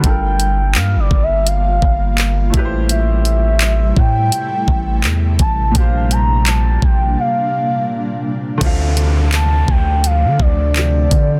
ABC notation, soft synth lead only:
X:1
M:4/4
L:1/8
Q:"Swing 16ths" 1/4=84
K:Dm
V:1 name="Soft synth lead"
g2 (3f d e f3 z | e3 g3 z a | f b a g f3 z | z2 a g f d3 |]